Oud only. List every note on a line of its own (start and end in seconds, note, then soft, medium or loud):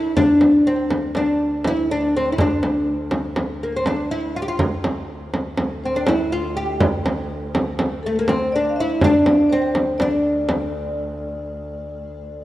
0.00 0.16 E4 medium
0.17 0.68 D4 medium
0.67 1.17 C4 medium
1.17 1.67 D4 medium
1.67 1.91 E4 medium
1.91 2.16 D4 medium
2.17 2.32 C4 medium
2.32 2.39 E4 medium
2.40 2.91 D4 medium
3.63 3.75 A#3 medium
3.77 3.87 C4 medium
3.87 4.10 D4 medium
4.11 4.36 E4 medium
4.36 4.42 F4 medium
4.42 4.48 G4 medium
4.48 4.60 F4 medium
5.85 5.97 C4 medium
5.96 6.09 D4 medium
6.08 6.32 E4 medium
6.32 6.56 F4 medium
6.57 6.80 G4 medium
8.06 8.17 A3 medium
8.19 8.30 A#3 medium
8.29 8.54 C4 medium
8.56 8.80 D4 medium
8.80 9.04 E4 medium
9.04 9.54 D4 medium
9.52 10.03 C4 medium
10.02 12.44 D4 medium